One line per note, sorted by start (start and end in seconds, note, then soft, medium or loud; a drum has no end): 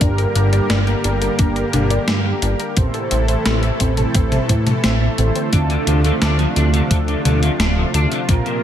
0.00 0.26 G1 loud
0.00 0.49 G2 medium
0.00 2.74 D3 medium
0.00 2.74 G3 medium
0.00 0.49 A#3 medium
0.00 2.74 A#3 medium
0.00 0.49 D4 medium
0.00 0.12 D4 medium
0.00 0.49 G4 medium
0.00 2.74 G4 medium
0.00 2.73 A#4 medium
0.00 0.49 A#4 medium
0.00 kick loud
0.00 closed hi-hat medium
0.18 0.29 A#4 medium
0.18 closed hi-hat soft
0.35 0.60 G1 medium
0.35 0.52 D4 medium
0.35 closed hi-hat medium
0.53 1.18 G2 medium
0.53 1.18 A#3 medium
0.53 1.18 D4 medium
0.53 1.18 G4 medium
0.53 1.18 A#4 medium
0.53 0.59 D5 medium
0.53 closed hi-hat medium
0.70 0.95 G1 medium
0.70 0.81 D4 medium
0.70 snare loud
0.70 closed hi-hat medium
0.87 1.03 G5 medium
0.87 closed hi-hat soft
1.04 1.29 G1 medium
1.04 1.15 D4 medium
1.04 closed hi-hat medium
1.22 1.69 G2 medium
1.22 1.69 A#3 medium
1.22 1.69 D4 medium
1.22 1.69 G4 medium
1.22 1.69 A#4 medium
1.22 1.38 A#4 medium
1.22 closed hi-hat medium
1.39 1.64 G1 medium
1.39 1.50 D4 medium
1.39 kick loud
1.39 closed hi-hat medium
1.56 1.67 A#4 medium
1.56 closed hi-hat soft
1.73 1.98 G1 medium
1.73 1.89 G2 medium
1.73 1.89 A#3 medium
1.73 1.89 D4 medium
1.73 1.89 G4 medium
1.73 1.89 A#4 medium
1.73 closed hi-hat medium
1.73 mid tom medium
1.90 1.97 D5 medium
1.90 closed hi-hat medium
2.08 2.33 G2 medium
2.08 2.19 D4 medium
2.08 snare loud
2.08 closed hi-hat medium
2.25 2.35 G2 medium
2.25 2.35 A#3 medium
2.25 2.35 D4 medium
2.25 2.35 G4 medium
2.25 2.35 A#4 medium
2.25 2.41 G5 medium
2.42 2.55 G1 medium
2.42 2.53 D4 medium
2.42 closed hi-hat medium
2.60 2.76 A#4 medium
2.60 closed hi-hat medium
2.77 2.89 A1 loud
2.77 3.25 A2 medium
2.77 5.50 C3 medium
2.77 5.50 E3 medium
2.77 8.25 A3 medium
2.77 3.25 C4 medium
2.77 2.88 C4 medium
2.77 3.25 E4 medium
2.77 5.50 E4 medium
2.77 3.25 A4 medium
2.77 5.50 A4 medium
2.77 3.25 C5 medium
2.77 kick loud
2.77 closed hi-hat medium
2.94 3.05 A4 medium
2.94 closed hi-hat soft
3.11 3.36 A1 medium
3.11 3.27 C4 medium
3.11 closed hi-hat medium
3.28 3.94 A2 medium
3.28 3.94 C4 medium
3.28 3.94 E4 medium
3.28 3.94 A4 medium
3.28 3.94 C5 medium
3.28 3.35 C5 medium
3.28 closed hi-hat soft
3.46 3.71 A1 medium
3.46 3.57 C4 medium
3.46 snare loud
3.46 closed hi-hat medium
3.63 3.79 E5 medium
3.63 closed hi-hat soft
3.80 4.05 A1 medium
3.80 3.91 C4 medium
3.80 kick medium
3.80 closed hi-hat medium
3.97 4.45 A2 medium
3.97 4.45 C4 medium
3.97 4.45 E4 medium
3.97 4.14 A4 medium
3.97 4.45 A4 medium
3.97 4.45 C5 medium
3.97 closed hi-hat medium
3.97 mid tom medium
4.15 4.40 A1 medium
4.15 4.26 C4 medium
4.15 kick loud
4.15 closed hi-hat medium
4.32 4.43 A4 medium
4.32 closed hi-hat soft
4.32 mid tom medium
4.49 4.74 A2 medium
4.49 4.60 C4 medium
4.49 kick medium
4.49 closed hi-hat medium
4.67 4.73 A4 medium
4.67 closed hi-hat medium
4.67 mid tom medium
4.84 5.09 A1 medium
4.84 4.95 C4 loud
4.84 snare loud
4.84 closed hi-hat medium
5.01 5.14 A2 medium
5.01 5.14 C4 medium
5.01 5.14 E4 medium
5.01 5.14 A4 medium
5.01 5.14 E5 medium
5.01 5.08 A5 medium
5.18 5.31 A1 loud
5.18 5.49 D3 medium
5.18 5.25 C4 medium
5.18 5.49 C4 medium
5.18 5.49 E4 medium
5.18 5.49 A4 medium
5.18 5.49 C5 medium
5.18 closed hi-hat medium
5.36 5.42 C4 medium
5.36 closed hi-hat soft
5.53 5.78 D2 loud
5.53 8.63 C3 medium
5.53 5.58 D3 medium
5.53 6.00 D3 medium
5.53 8.63 F3 medium
5.53 6.01 C4 medium
5.53 6.00 D4 medium
5.53 8.26 D4 medium
5.53 8.63 F4 medium
5.53 6.00 F4 medium
5.53 6.00 A4 medium
5.53 kick loud
5.53 closed hi-hat medium
5.70 5.83 D3 medium
5.70 closed hi-hat soft
5.87 6.12 D2 medium
5.87 6.00 D3 medium
5.87 closed hi-hat medium
6.04 6.13 D3 loud
6.04 6.69 D3 medium
6.04 6.69 C4 medium
6.04 6.70 D4 medium
6.04 6.70 F4 medium
6.04 6.69 A4 medium
6.04 closed hi-hat soft
6.22 6.47 D2 loud
6.22 6.35 D4 medium
6.22 snare loud
6.22 closed hi-hat medium
6.39 6.48 F3 medium
6.39 closed hi-hat soft
6.56 6.81 D2 medium
6.56 6.69 D4 medium
6.56 closed hi-hat medium
6.74 6.82 D3 loud
6.74 7.21 D3 medium
6.74 7.21 C4 medium
6.74 7.21 D4 medium
6.74 7.21 F4 medium
6.74 7.21 A4 medium
6.74 closed hi-hat soft
6.91 7.16 D2 medium
6.91 6.96 D3 medium
6.91 kick loud
6.91 closed hi-hat medium
7.08 7.21 D3 medium
7.08 closed hi-hat soft
7.25 7.50 D2 medium
7.25 7.38 D3 medium
7.25 7.40 D3 medium
7.25 7.40 C4 medium
7.25 7.40 D4 medium
7.25 7.40 F4 medium
7.25 7.40 A4 medium
7.25 closed hi-hat medium
7.25 mid tom medium
7.43 7.51 D3 loud
7.43 closed hi-hat soft
7.60 7.84 D1 medium
7.60 7.73 D4 medium
7.60 snare loud
7.60 closed hi-hat medium
7.77 7.86 D3 medium
7.77 7.86 F3 medium
7.77 7.86 C4 medium
7.77 7.86 D4 medium
7.77 7.86 F4 medium
7.77 7.86 A4 medium
7.94 8.07 D2 medium
7.94 8.07 D4 medium
7.94 closed hi-hat medium
8.11 8.20 D3 loud
8.11 closed hi-hat soft
8.29 8.41 A#1 medium
8.29 8.34 A#2 medium
8.29 8.63 A#2 medium
8.29 8.63 A#3 medium
8.29 8.63 C4 medium
8.29 8.63 F4 medium
8.29 8.63 A#4 medium
8.29 kick loud
8.29 closed hi-hat medium
8.46 8.59 A#2 medium
8.46 closed hi-hat soft